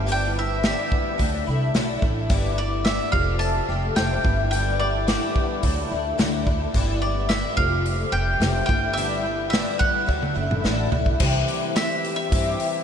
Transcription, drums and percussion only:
0, 0, Header, 1, 2, 480
1, 0, Start_track
1, 0, Key_signature, 1, "major"
1, 0, Tempo, 555556
1, 79, Time_signature, 4, 2, 24, 8
1, 11089, End_track
2, 0, Start_track
2, 0, Title_t, "Drums"
2, 72, Note_on_c, 9, 46, 49
2, 159, Note_off_c, 9, 46, 0
2, 548, Note_on_c, 9, 46, 45
2, 552, Note_on_c, 9, 38, 93
2, 635, Note_off_c, 9, 46, 0
2, 638, Note_off_c, 9, 38, 0
2, 793, Note_on_c, 9, 36, 85
2, 879, Note_off_c, 9, 36, 0
2, 1031, Note_on_c, 9, 46, 46
2, 1032, Note_on_c, 9, 36, 77
2, 1117, Note_off_c, 9, 46, 0
2, 1118, Note_off_c, 9, 36, 0
2, 1507, Note_on_c, 9, 46, 40
2, 1511, Note_on_c, 9, 38, 90
2, 1594, Note_off_c, 9, 46, 0
2, 1597, Note_off_c, 9, 38, 0
2, 1748, Note_on_c, 9, 36, 79
2, 1834, Note_off_c, 9, 36, 0
2, 1984, Note_on_c, 9, 46, 45
2, 1987, Note_on_c, 9, 36, 107
2, 2070, Note_off_c, 9, 46, 0
2, 2074, Note_off_c, 9, 36, 0
2, 2465, Note_on_c, 9, 46, 42
2, 2468, Note_on_c, 9, 38, 97
2, 2551, Note_off_c, 9, 46, 0
2, 2554, Note_off_c, 9, 38, 0
2, 2707, Note_on_c, 9, 36, 96
2, 2793, Note_off_c, 9, 36, 0
2, 2945, Note_on_c, 9, 46, 46
2, 3031, Note_off_c, 9, 46, 0
2, 3424, Note_on_c, 9, 46, 45
2, 3427, Note_on_c, 9, 38, 93
2, 3510, Note_off_c, 9, 46, 0
2, 3513, Note_off_c, 9, 38, 0
2, 3669, Note_on_c, 9, 36, 92
2, 3755, Note_off_c, 9, 36, 0
2, 3910, Note_on_c, 9, 46, 53
2, 3996, Note_off_c, 9, 46, 0
2, 4387, Note_on_c, 9, 46, 46
2, 4391, Note_on_c, 9, 38, 96
2, 4474, Note_off_c, 9, 46, 0
2, 4477, Note_off_c, 9, 38, 0
2, 4628, Note_on_c, 9, 36, 85
2, 4714, Note_off_c, 9, 36, 0
2, 4865, Note_on_c, 9, 46, 52
2, 4868, Note_on_c, 9, 36, 73
2, 4951, Note_off_c, 9, 46, 0
2, 4954, Note_off_c, 9, 36, 0
2, 5348, Note_on_c, 9, 46, 49
2, 5351, Note_on_c, 9, 38, 95
2, 5434, Note_off_c, 9, 46, 0
2, 5437, Note_off_c, 9, 38, 0
2, 5588, Note_on_c, 9, 36, 80
2, 5674, Note_off_c, 9, 36, 0
2, 5826, Note_on_c, 9, 46, 45
2, 5827, Note_on_c, 9, 36, 97
2, 5912, Note_off_c, 9, 46, 0
2, 5914, Note_off_c, 9, 36, 0
2, 6302, Note_on_c, 9, 46, 47
2, 6305, Note_on_c, 9, 38, 91
2, 6388, Note_off_c, 9, 46, 0
2, 6392, Note_off_c, 9, 38, 0
2, 6545, Note_on_c, 9, 36, 95
2, 6632, Note_off_c, 9, 36, 0
2, 6789, Note_on_c, 9, 46, 42
2, 6875, Note_off_c, 9, 46, 0
2, 7270, Note_on_c, 9, 46, 45
2, 7274, Note_on_c, 9, 38, 89
2, 7357, Note_off_c, 9, 46, 0
2, 7360, Note_off_c, 9, 38, 0
2, 7508, Note_on_c, 9, 36, 91
2, 7595, Note_off_c, 9, 36, 0
2, 7754, Note_on_c, 9, 46, 54
2, 7841, Note_off_c, 9, 46, 0
2, 8235, Note_on_c, 9, 46, 46
2, 8239, Note_on_c, 9, 38, 98
2, 8322, Note_off_c, 9, 46, 0
2, 8325, Note_off_c, 9, 38, 0
2, 8474, Note_on_c, 9, 36, 86
2, 8560, Note_off_c, 9, 36, 0
2, 8715, Note_on_c, 9, 36, 77
2, 8801, Note_off_c, 9, 36, 0
2, 8835, Note_on_c, 9, 48, 52
2, 8921, Note_off_c, 9, 48, 0
2, 9081, Note_on_c, 9, 47, 62
2, 9168, Note_off_c, 9, 47, 0
2, 9201, Note_on_c, 9, 38, 74
2, 9288, Note_off_c, 9, 38, 0
2, 9435, Note_on_c, 9, 43, 81
2, 9522, Note_off_c, 9, 43, 0
2, 9557, Note_on_c, 9, 36, 74
2, 9643, Note_off_c, 9, 36, 0
2, 9675, Note_on_c, 9, 49, 99
2, 9679, Note_on_c, 9, 36, 108
2, 9761, Note_off_c, 9, 49, 0
2, 9765, Note_off_c, 9, 36, 0
2, 9921, Note_on_c, 9, 46, 51
2, 10007, Note_off_c, 9, 46, 0
2, 10162, Note_on_c, 9, 46, 67
2, 10165, Note_on_c, 9, 38, 106
2, 10248, Note_off_c, 9, 46, 0
2, 10252, Note_off_c, 9, 38, 0
2, 10407, Note_on_c, 9, 46, 50
2, 10494, Note_off_c, 9, 46, 0
2, 10646, Note_on_c, 9, 36, 102
2, 10647, Note_on_c, 9, 46, 63
2, 10732, Note_off_c, 9, 36, 0
2, 10734, Note_off_c, 9, 46, 0
2, 10884, Note_on_c, 9, 46, 53
2, 10970, Note_off_c, 9, 46, 0
2, 11089, End_track
0, 0, End_of_file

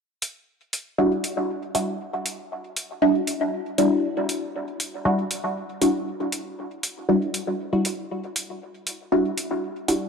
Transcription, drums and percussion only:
0, 0, Header, 1, 2, 480
1, 0, Start_track
1, 0, Key_signature, 1, "minor"
1, 0, Tempo, 508475
1, 1890, Time_signature, 4, 2, 24, 8
1, 9523, End_track
2, 0, Start_track
2, 0, Title_t, "Drums"
2, 209, Note_on_c, 9, 46, 73
2, 304, Note_off_c, 9, 46, 0
2, 689, Note_on_c, 9, 46, 61
2, 784, Note_off_c, 9, 46, 0
2, 1170, Note_on_c, 9, 46, 69
2, 1264, Note_off_c, 9, 46, 0
2, 1650, Note_on_c, 9, 46, 62
2, 1744, Note_off_c, 9, 46, 0
2, 2130, Note_on_c, 9, 46, 72
2, 2224, Note_off_c, 9, 46, 0
2, 2610, Note_on_c, 9, 46, 67
2, 2704, Note_off_c, 9, 46, 0
2, 3090, Note_on_c, 9, 46, 75
2, 3185, Note_off_c, 9, 46, 0
2, 3570, Note_on_c, 9, 46, 69
2, 3665, Note_off_c, 9, 46, 0
2, 4050, Note_on_c, 9, 46, 72
2, 4145, Note_off_c, 9, 46, 0
2, 4530, Note_on_c, 9, 46, 66
2, 4625, Note_off_c, 9, 46, 0
2, 5010, Note_on_c, 9, 46, 77
2, 5104, Note_off_c, 9, 46, 0
2, 5490, Note_on_c, 9, 46, 69
2, 5584, Note_off_c, 9, 46, 0
2, 5970, Note_on_c, 9, 46, 76
2, 6064, Note_off_c, 9, 46, 0
2, 6450, Note_on_c, 9, 46, 68
2, 6544, Note_off_c, 9, 46, 0
2, 6930, Note_on_c, 9, 46, 71
2, 7024, Note_off_c, 9, 46, 0
2, 7410, Note_on_c, 9, 46, 70
2, 7504, Note_off_c, 9, 46, 0
2, 7891, Note_on_c, 9, 46, 75
2, 7985, Note_off_c, 9, 46, 0
2, 8370, Note_on_c, 9, 46, 65
2, 8465, Note_off_c, 9, 46, 0
2, 8850, Note_on_c, 9, 46, 70
2, 8945, Note_off_c, 9, 46, 0
2, 9330, Note_on_c, 9, 46, 68
2, 9425, Note_off_c, 9, 46, 0
2, 9523, End_track
0, 0, End_of_file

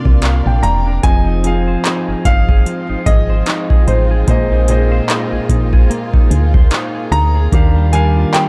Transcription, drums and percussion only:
0, 0, Header, 1, 2, 480
1, 0, Start_track
1, 0, Tempo, 810811
1, 614, Time_signature, 4, 2, 24, 8
1, 5025, End_track
2, 0, Start_track
2, 0, Title_t, "Drums"
2, 32, Note_on_c, 9, 36, 89
2, 92, Note_off_c, 9, 36, 0
2, 129, Note_on_c, 9, 42, 56
2, 140, Note_on_c, 9, 39, 112
2, 188, Note_off_c, 9, 42, 0
2, 199, Note_off_c, 9, 39, 0
2, 376, Note_on_c, 9, 42, 49
2, 435, Note_off_c, 9, 42, 0
2, 613, Note_on_c, 9, 36, 112
2, 613, Note_on_c, 9, 42, 73
2, 672, Note_off_c, 9, 36, 0
2, 672, Note_off_c, 9, 42, 0
2, 853, Note_on_c, 9, 42, 78
2, 912, Note_off_c, 9, 42, 0
2, 1097, Note_on_c, 9, 39, 109
2, 1098, Note_on_c, 9, 42, 77
2, 1156, Note_off_c, 9, 39, 0
2, 1157, Note_off_c, 9, 42, 0
2, 1333, Note_on_c, 9, 36, 89
2, 1334, Note_on_c, 9, 42, 79
2, 1392, Note_off_c, 9, 36, 0
2, 1393, Note_off_c, 9, 42, 0
2, 1472, Note_on_c, 9, 36, 87
2, 1532, Note_off_c, 9, 36, 0
2, 1577, Note_on_c, 9, 42, 57
2, 1636, Note_off_c, 9, 42, 0
2, 1813, Note_on_c, 9, 36, 83
2, 1815, Note_on_c, 9, 42, 63
2, 1872, Note_off_c, 9, 36, 0
2, 1874, Note_off_c, 9, 42, 0
2, 2049, Note_on_c, 9, 42, 58
2, 2060, Note_on_c, 9, 39, 112
2, 2108, Note_off_c, 9, 42, 0
2, 2119, Note_off_c, 9, 39, 0
2, 2192, Note_on_c, 9, 36, 94
2, 2251, Note_off_c, 9, 36, 0
2, 2295, Note_on_c, 9, 42, 49
2, 2354, Note_off_c, 9, 42, 0
2, 2532, Note_on_c, 9, 42, 72
2, 2533, Note_on_c, 9, 36, 112
2, 2591, Note_off_c, 9, 42, 0
2, 2592, Note_off_c, 9, 36, 0
2, 2771, Note_on_c, 9, 42, 77
2, 2830, Note_off_c, 9, 42, 0
2, 3016, Note_on_c, 9, 39, 108
2, 3018, Note_on_c, 9, 42, 74
2, 3075, Note_off_c, 9, 39, 0
2, 3077, Note_off_c, 9, 42, 0
2, 3253, Note_on_c, 9, 36, 93
2, 3253, Note_on_c, 9, 42, 77
2, 3312, Note_off_c, 9, 36, 0
2, 3312, Note_off_c, 9, 42, 0
2, 3392, Note_on_c, 9, 36, 92
2, 3451, Note_off_c, 9, 36, 0
2, 3497, Note_on_c, 9, 42, 58
2, 3557, Note_off_c, 9, 42, 0
2, 3633, Note_on_c, 9, 36, 90
2, 3692, Note_off_c, 9, 36, 0
2, 3736, Note_on_c, 9, 42, 64
2, 3795, Note_off_c, 9, 42, 0
2, 3873, Note_on_c, 9, 36, 97
2, 3932, Note_off_c, 9, 36, 0
2, 3971, Note_on_c, 9, 42, 60
2, 3982, Note_on_c, 9, 39, 118
2, 4030, Note_off_c, 9, 42, 0
2, 4041, Note_off_c, 9, 39, 0
2, 4217, Note_on_c, 9, 42, 49
2, 4276, Note_off_c, 9, 42, 0
2, 4454, Note_on_c, 9, 36, 114
2, 4456, Note_on_c, 9, 42, 74
2, 4513, Note_off_c, 9, 36, 0
2, 4515, Note_off_c, 9, 42, 0
2, 4695, Note_on_c, 9, 42, 75
2, 4754, Note_off_c, 9, 42, 0
2, 4938, Note_on_c, 9, 39, 107
2, 4940, Note_on_c, 9, 42, 79
2, 4997, Note_off_c, 9, 39, 0
2, 4999, Note_off_c, 9, 42, 0
2, 5025, End_track
0, 0, End_of_file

